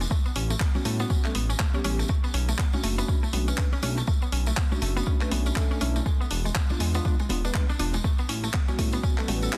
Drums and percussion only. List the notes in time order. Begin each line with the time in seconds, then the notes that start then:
0.01 tambourine, high bongo
0.10 kick, tambourine, high conga
0.26 tambourine
0.36 open hi-hat
0.50 tambourine, high conga
0.60 kick, clap
0.75 tambourine, high bongo, low conga
0.85 open hi-hat, high conga
1.00 tambourine
1.10 kick, tambourine
1.24 clap, tambourine, high conga
1.35 open hi-hat, low conga
1.50 tambourine
1.59 kick, clap
1.74 tambourine, high conga
1.84 open hi-hat, low conga
1.99 tambourine
2.08 kick, tambourine, high conga
2.24 tambourine
2.34 open hi-hat
2.49 tambourine, high conga
2.58 kick, clap
2.73 tambourine, high bongo, low conga
2.83 open hi-hat, high conga
2.99 tambourine
3.08 kick, tambourine
3.23 tambourine, high bongo, high conga
3.33 open hi-hat, high bongo, low conga
3.48 tambourine
3.58 kick, clap, tambourine
3.72 tambourine, high conga
3.82 open hi-hat, low conga
3.97 tambourine, high bongo
4.07 kick, tambourine, high conga
4.22 tambourine
4.32 open hi-hat
4.46 tambourine, high conga
4.57 kick, clap
4.72 tambourine, high bongo, low conga
4.82 open hi-hat, high conga
4.97 tambourine
5.06 kick, tambourine
5.21 clap, tambourine, high conga
5.31 open hi-hat, low conga
5.46 tambourine
5.56 kick, clap, tambourine
5.71 tambourine, high conga
5.81 open hi-hat, low conga
5.96 tambourine
6.06 kick, tambourine, high conga
6.21 tambourine
6.31 open hi-hat
6.45 tambourine, high conga
6.55 kick, clap, tambourine
6.70 tambourine, high bongo, low conga
6.80 open hi-hat, high conga
6.95 tambourine
7.05 kick, tambourine
7.19 tambourine, high bongo, high conga
7.29 open hi-hat, high bongo, low conga
7.45 tambourine
7.54 kick, clap
7.69 tambourine, high conga
7.79 open hi-hat, low conga
7.93 tambourine, high bongo
8.04 kick, tambourine, high conga
8.18 tambourine
8.29 open hi-hat
8.44 tambourine, high conga
8.54 kick, clap
8.68 tambourine, high bongo, low conga
8.79 kick, open hi-hat, high conga
8.92 tambourine
9.03 kick, tambourine, high bongo
9.18 clap, tambourine, high conga
9.28 open hi-hat, low conga
9.42 tambourine
9.53 clap, open hi-hat, tambourine